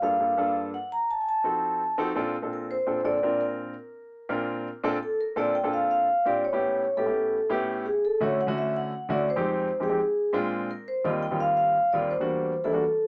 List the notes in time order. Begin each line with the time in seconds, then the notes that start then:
0.02 G2 A#3 D4 F4 A4 F5
0.20 G2 A#3 D4 F4 A4
0.37 G2 A#3 D4 F4 A4
0.74 F#5
0.92 A#5
1.11 A5
1.21 G#5
1.29 A5
1.44 F3 C4 D#4 F#4 A4
1.98 F3 C4 D#4 F#4 A4
2.15 A#2 C4 D4 F4 A4
2.42 A#2 C4 D4 F4 A4
2.53 A#4
2.71 C5
2.87 A#2 C4 D4 F4 A4
3.04 A#2 C4 D4 F4 A4 D5
3.23 A#2 C4 D4 F4 A#4
3.41 A#4
4.29 A#2 C4 D4 F4 A#4
4.84 A#2 C4 D4 F4 A4
5.03 A4
5.21 A#4
5.36 A#2 C4 D4 F4 A4 D5
5.55 G5
5.63 A#2 C4 D4 F4 A4
5.73 F5
5.91 F5
6.25 A#2 C4 D4 F4 G4 D5
6.45 C#5
6.53 A2 B3 C#4 E4 G4
6.97 A2 B3 C#4 E4 G4 A4
7.06 A2 B3 C#4 E4 G4
7.50 A2 B3 C#4 E4 G4
7.86 G#4
8.05 A4
8.21 D3 A3 C#4 E4 F#4 C#5
8.41 F#5
8.47 D3 A3 C#4 E4 F#4
8.58 E5
8.77 F#5
9.09 D3 A3 C#4 E4 F#4 D5
9.30 C5
9.36 F2 G#3 C4 D#4 G4
9.80 F2 G#3 C4 D#4 G4 G#4
9.89 F2 G#3 C4 D#4 G4
10.33 A#2 G#3 C4 D4 F4
10.71 A#4
10.88 C5
11.04 D#2 G3 A#3 C4 F4 D#5
11.23 G5
11.31 D#2 G3 A#3 C4 F4
11.40 F5
11.57 F5
11.92 D#2 G3 A#3 C4 F4 D5
12.11 C5
12.20 E2 G3 A#3 D4 F#4
12.64 E2 G3 A#3 D4 E4 A4
12.73 E2 G3 A#3 D4 F#4